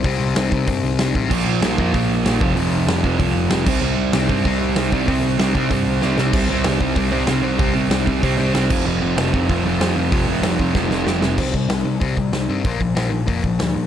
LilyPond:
<<
  \new Staff \with { instrumentName = "Distorted electric guitar" } { \clef bass \time 4/4 \key f \major \tempo 4 = 190 <c g c'>4 <c g c'>8 <c g c'>8 <c g c'>4 <c g c'>8 <c g c'>8 | <bes, f bes>4 <bes, f bes>8 <bes, f bes>8 <bes, f bes>4 <bes, f bes>8 <f, c f>8 | <f, c f>4 <f, c f>8 <f, c f>8 <f, c f>4 <f, c f>8 <c g c'>8 | <c g c'>4 <c g c'>8 <c g c'>8 <c g c'>4 <c g c'>8 <c g c'>8 |
<c g c'>4 <c g c'>8 <c g c'>8 <c g c'>4 <c g c'>8 <c g c'>8 | <c g c'>8 <c g c'>8 <c g c'>8 <c g c'>8 <c g c'>8 <c g c'>8 <c g c'>8 <c g c'>8 | <c g c'>8 <c g c'>8 <c g c'>8 <c g c'>8 <c g c'>8 <c g c'>8 <c g c'>8 <f, c f>8 | <f, c f>8 <f, c f>8 <f, c f>8 <f, c f>8 <f, c f>8 <f, c f>8 <f, c f>8 <f, c f>8 |
<f, c f>8 <f, c f>8 <f, c f>8 <f, c f>8 <f, c f>8 <f, c f>8 <f, c f>8 <f, c f>8 | <c g c'>8 <c g>8 <c g>8 <c g>8 <c g c'>8 <c g>8 <c g>8 <c g c'>8 | <bes, f bes>8 <bes, f>8 <bes, f bes>8 <bes, f>8 <bes, f bes>8 <bes, f>8 <bes, f>8 <bes, f>8 | }
  \new Staff \with { instrumentName = "Overdriven electric guitar" } { \clef bass \time 4/4 \key f \major r1 | <bes, f bes>4 <bes, f bes>8 <bes, f bes>8 <bes, f bes>4 <bes, f bes>8 <f, c f>8 | <f, c f>4 <f, c f>8 <f, c f>8 <f, c f>4 <f, c f>8 <c g c'>8 | <c g c'>4 <c g c'>8 <c g c'>8 <c g c'>4 <c g c'>8 <c g c'>8 |
<c g c'>4 <c g c'>8 <c g c'>8 <c g c'>4 <c g c'>8 <c g c'>8 | <c g c'>8 <c g c'>8 <c g c'>8 <c g c'>8 <c g c'>8 <c g c'>8 <c g c'>8 <c g c'>8 | <c g c'>8 <c g c'>8 <c g c'>8 <c g c'>8 <c g c'>8 <c g c'>8 <c g c'>8 <f, c f>8 | <f, c f>8 <f, c f>8 <f, c f>8 <f, c f>8 <f, c f>8 <f, c f>8 <f, c f>8 <f, c f>8 |
<f, c f>8 <f, c f>8 <f, c f>8 <f, c f>8 <f, c f>8 <f, c f>8 <f, c f>8 <f, c f>8 | r1 | r1 | }
  \new Staff \with { instrumentName = "Picked electric bass" } { \clef bass \time 4/4 \key f \major c,8 c,8 c,8 c,8 g,8 c,8 c,8 a,,8 | bes,,8 bes,,8 bes,,8 f,8 bes,,8 bes,,8 bes,,8 f,,8 | f,,8 f,,8 f,,8 f,,8 c,8 f,,8 f,,8 c,8 | c,8 c,8 c,8 g,8 c,8 c,8 c,8 c,8 |
c,8 c,8 c,8 c,8 g,8 c,8 c,8 c,8 | c,8 c,8 c,8 c,8 c,8 c,8 c,8 c,8 | c,8 c,8 c,4 c,8 c,8 c,8 f,,8 | f,,8 f,,8 f,,8 f,,8 f,,8 f,,8 f,,8 f,,8 |
f,,8 f,,8 f,,4 f,,8 f,,8 f,,4 | c,8 c,8 c,8 c,8 c,8 c,8 c,8 g,8 | bes,,8 bes,,8 bes,,8 bes,,8 f,,8 bes,,8 d,8 bes,8 | }
  \new DrumStaff \with { instrumentName = "Drums" } \drummode { \time 4/4 <hho bd>4 <hho sn>8 bd8 <hho bd>4 <hho sn>8 bd8 | <cymc bd>4 <hho sn>8 bd8 <hho bd>4 <hho sn>8 bd8 | hho4 <hho sn>8 bd8 <hho bd>4 <hho sn>8 <cymc bd>8 | r4 <hho sn>8 bd8 <hho bd>4 <hho sn>8 bd8 |
<hho bd>4 <hho sn>8 bd8 <hho bd>4 sn8 sn8 | <cymc bd>4 <hho sn>8 bd8 <hho bd>4 <hho sn>4 | <hho bd>4 <hho sn>8 bd8 <hho bd>4 <hho sn>8 <cymc bd>8 | r4 <hho sn>8 bd8 <hho bd>4 <hho sn>4 |
<hho bd>4 <hho sn>8 bd8 <bd sn>8 sn8 sn8 sn8 | <cymc bd>8 bd8 <hho sn>4 <hho bd>8 bd8 <hho sn>4 | <hho bd>8 bd8 <hho sn>4 <hho bd>8 bd8 <hho sn>4 | }
>>